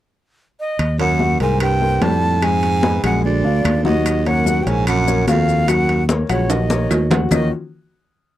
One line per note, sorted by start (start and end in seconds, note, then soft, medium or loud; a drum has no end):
0.60 0.97 D#5 medium
0.79 1.37 D#2 medium
0.79 high conga soft
0.79 high timbale medium
0.79 claves medium
0.99 1.38 F#2 medium
0.99 1.16 A#3 medium
0.99 1.17 A#4 medium
0.99 1.17 C#5 medium
0.99 1.38 F#5 medium
0.99 high conga soft
0.99 high timbale medium
1.19 1.37 F#3 medium
1.19 1.37 F#4 medium
1.19 1.37 F#5 medium
1.19 high conga medium
1.40 1.98 C2 medium
1.40 1.60 G#2 medium
1.40 1.74 A#3 medium
1.40 1.74 A#4 medium
1.40 1.74 C5 medium
1.40 1.60 G#5 medium
1.40 high conga soft
1.40 high timbale medium
1.60 2.03 G2 medium
1.60 2.04 G5 medium
1.60 high conga soft
1.60 high timbale loud
1.60 claves medium
1.81 1.98 A#3 medium
1.81 1.98 A#4 medium
1.81 1.99 C5 medium
1.81 high conga soft
2.01 2.98 F2 medium
2.01 2.44 A2 medium
2.01 2.35 G3 medium
2.01 2.35 G4 medium
2.01 2.35 G5 medium
2.01 2.45 A5 loud
2.01 high conga medium
2.01 high timbale medium
2.01 low timbale medium
2.22 high conga soft
2.42 3.04 G#2 medium
2.42 2.76 G#3 medium
2.42 2.76 G#4 medium
2.42 2.76 G#5 medium
2.42 3.05 G#5 loud
2.42 high conga soft
2.42 high timbale medium
2.42 claves medium
2.62 high conga soft
2.62 high timbale medium
2.83 3.00 B3 medium
2.83 3.00 B4 medium
2.83 3.00 D#5 medium
2.83 high conga medium
3.03 3.42 A#1 medium
3.03 3.23 F#2 medium
3.03 3.37 G#3 medium
3.03 3.37 G#4 medium
3.03 3.24 F#5 medium
3.03 3.37 G#5 medium
3.03 high conga soft
3.03 high timbale medium
3.03 claves medium
3.24 3.82 D2 medium
3.24 3.82 D5 medium
3.24 high conga soft
3.44 3.64 D2 medium
3.44 3.78 D4 medium
3.44 3.78 D5 medium
3.44 3.78 F5 medium
3.44 high conga soft
3.65 4.61 D#2 medium
3.65 high conga medium
3.65 high timbale loud
3.65 claves medium
3.85 4.28 D#2 medium
3.85 4.19 F#3 medium
3.85 4.19 F#4 medium
3.85 4.28 D#5 medium
3.85 4.19 F#5 medium
3.85 high conga medium
4.06 high conga soft
4.06 high timbale medium
4.06 claves medium
4.06 maracas medium
4.26 4.63 F#2 medium
4.26 4.43 A#3 medium
4.26 4.43 A#4 medium
4.26 4.43 C#5 medium
4.26 4.65 F#5 medium
4.26 high conga soft
4.26 high timbale medium
4.46 4.63 F#3 medium
4.46 4.63 F#4 medium
4.46 4.63 F#5 medium
4.46 high conga medium
4.46 maracas medium
4.61 4.69 G2 medium
4.61 4.69 G5 medium
4.66 5.24 A#1 medium
4.66 4.87 G#2 medium
4.66 5.00 A#3 medium
4.66 5.00 A#4 medium
4.66 5.00 C#5 medium
4.66 4.87 G#5 medium
4.66 high conga soft
4.66 high timbale medium
4.66 maracas soft
4.87 5.25 F#2 medium
4.87 5.26 F#5 medium
4.87 high conga soft
4.87 high timbale medium
4.87 claves medium
4.87 maracas medium
5.07 5.24 A#3 medium
5.07 5.24 A#4 medium
5.07 5.24 C#5 medium
5.07 high conga soft
5.07 maracas medium
5.27 6.23 D#2 medium
5.27 5.71 F2 medium
5.27 5.61 D#3 medium
5.27 5.61 F#4 medium
5.27 5.62 F5 medium
5.27 5.71 F5 medium
5.27 high conga medium
5.27 high timbale medium
5.27 low timbale medium
5.27 maracas medium
5.48 high conga soft
5.48 maracas soft
5.68 6.03 F#2 medium
5.68 6.02 F#3 medium
5.68 6.02 F#4 medium
5.68 6.02 F#5 medium
5.68 6.03 F#5 loud
5.68 high conga soft
5.68 high timbale medium
5.68 claves medium
5.68 maracas medium
5.89 high conga soft
5.89 high timbale medium
6.08 6.25 A#3 medium
6.08 6.26 A#4 medium
6.08 6.26 C#5 medium
6.08 high conga loud
6.08 maracas medium
6.29 6.86 A#1 medium
6.29 6.52 C#2 medium
6.29 6.63 F#3 medium
6.29 6.63 F#4 medium
6.29 6.52 C#5 medium
6.29 6.63 F#5 medium
6.29 high conga soft
6.29 high timbale medium
6.29 claves medium
6.29 maracas soft
6.50 7.11 D#2 medium
6.50 7.11 D#5 medium
6.50 high conga soft
6.50 high timbale medium
6.50 maracas medium
6.70 7.04 A#3 medium
6.70 7.04 A#4 medium
6.70 7.04 C#5 medium
6.70 high conga medium
6.70 maracas medium
6.91 7.27 D#2 medium
6.91 low timbale loud
6.91 claves medium
6.91 maracas medium
7.11 7.28 F#3 medium
7.11 7.28 F#4 medium
7.11 7.28 F#5 medium
7.11 low conga medium
7.11 low timbale loud
7.11 maracas soft
7.31 7.50 D#2 loud
7.31 7.50 D#3 medium
7.31 7.50 A#3 medium
7.31 7.50 C#4 medium
7.31 7.50 D#4 medium
7.31 7.50 F4 medium
7.31 7.50 F#4 medium
7.31 7.50 D#5 medium
7.31 low conga medium
7.31 low timbale medium
7.31 claves medium
7.31 maracas medium